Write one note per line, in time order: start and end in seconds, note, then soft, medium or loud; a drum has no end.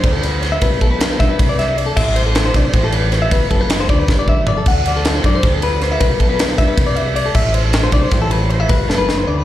0.00 0.56 D2 loud
0.00 0.12 C5 medium
0.00 kick loud
0.00 ride loud
0.12 0.22 A4 medium
0.22 0.42 B4 medium
0.22 snare soft
0.22 ride medium
0.42 0.52 C5 medium
0.42 snare soft
0.42 ride medium
0.52 0.62 E5 medium
0.61 0.79 C2 loud
0.61 0.81 B4 loud
0.61 kick loud
0.61 ride loud
0.81 1.16 B1 loud
0.81 0.91 A4 medium
0.81 kick medium
0.81 ride medium
0.91 1.10 B4 medium
1.00 snare loud
1.00 ride loud
1.10 1.20 C5 medium
1.20 1.37 G2 medium
1.20 1.29 E5 medium
1.20 kick medium
1.20 snare soft
1.20 ride medium
1.30 1.49 B4 medium
1.39 1.91 C2 loud
1.39 kick loud
1.39 ride loud
1.49 1.58 D5 medium
1.59 1.77 E5 medium
1.59 snare soft
1.59 ride medium
1.77 1.87 D5 medium
1.77 ride medium
1.86 1.96 A4 medium
1.97 2.48 A1 loud
1.97 2.16 E5 loud
1.97 kick loud
1.97 crash loud
2.16 2.26 C5 medium
2.16 ride medium
2.26 2.45 A4 medium
2.35 snare loud
2.35 ride loud
2.46 2.56 C5 medium
2.54 2.72 C2 loud
2.54 2.66 D5 medium
2.54 kick medium
2.54 snare soft
2.54 ride medium
2.65 2.84 C5 medium
2.73 3.25 A1 loud
2.73 kick loud
2.73 ride loud
2.84 2.94 A4 medium
2.92 3.13 B4 medium
2.92 ride medium
3.12 3.22 C5 medium
3.12 snare soft
3.12 ride medium
3.22 3.32 E5 medium
3.31 3.49 G1 loud
3.31 3.50 B4 medium
3.31 kick loud
3.31 ride loud
3.50 3.85 F#1 loud
3.50 3.61 A4 medium
3.50 kick medium
3.50 ride medium
3.61 3.80 B4 medium
3.70 snare loud
3.70 ride loud
3.80 3.89 C5 medium
3.89 4.06 D2 medium
3.89 3.99 D5 medium
3.89 kick medium
3.89 ride medium
3.99 4.18 B4 medium
4.08 4.60 G1 loud
4.08 kick loud
4.08 snare medium
4.19 4.28 D5 medium
4.28 4.48 E5 medium
4.28 kick medium
4.47 4.57 D5 medium
4.47 floor tom loud
4.58 4.67 A4 medium
4.66 5.18 D2 loud
4.66 4.86 F#5 loud
4.66 kick loud
4.66 crash loud
4.85 4.96 D5 medium
4.85 ride medium
4.96 5.16 A4 medium
5.05 snare loud
5.05 ride loud
5.16 5.25 C5 medium
5.24 5.41 F#2 loud
5.24 5.35 D5 medium
5.24 kick medium
5.24 ride medium
5.35 5.54 C5 medium
5.43 5.95 D2 loud
5.43 kick loud
5.43 snare soft
5.43 ride loud
5.54 5.63 A4 medium
5.62 5.82 B4 medium
5.62 ride medium
5.81 5.91 C5 medium
5.81 snare soft
5.81 ride medium
5.91 6.01 E5 medium
6.00 6.18 C2 loud
6.00 6.19 B4 loud
6.00 kick loud
6.00 ride loud
6.19 6.54 B1 loud
6.19 6.29 A4 medium
6.19 kick medium
6.19 ride medium
6.29 6.49 B4 medium
6.39 snare loud
6.39 ride loud
6.49 6.58 C5 medium
6.58 6.76 G2 medium
6.58 6.68 E5 medium
6.58 kick medium
6.58 snare soft
6.58 ride medium
6.68 6.87 B4 medium
6.77 7.29 C2 loud
6.77 kick loud
6.77 ride loud
6.87 6.96 D5 medium
6.96 7.15 E5 medium
6.96 ride medium
7.16 7.26 D5 medium
7.16 ride medium
7.26 7.35 A4 medium
7.35 7.87 A1 loud
7.35 7.54 E5 loud
7.35 kick loud
7.35 crash loud
7.54 7.64 C5 medium
7.54 ride medium
7.64 7.83 A4 medium
7.73 snare loud
7.73 ride loud
7.84 7.93 C5 medium
7.92 8.10 C2 loud
7.92 8.03 D5 medium
7.92 kick medium
7.92 ride medium
8.03 8.21 C5 medium
8.11 8.64 A1 loud
8.11 kick loud
8.11 snare soft
8.11 ride loud
8.22 8.31 A4 medium
8.31 8.50 B4 medium
8.31 ride medium
8.50 8.60 C5 medium
8.50 ride medium
8.60 8.70 E5 medium
8.69 8.87 G1 loud
8.69 8.89 B4 loud
8.69 kick loud
8.69 ride loud
8.89 9.24 F#1 loud
8.89 8.99 A4 medium
8.89 snare medium
8.98 9.18 B4 medium
9.09 snare medium
9.18 9.27 C5 medium
9.27 9.44 D2 medium
9.27 9.37 D5 medium
9.37 9.44 B4 medium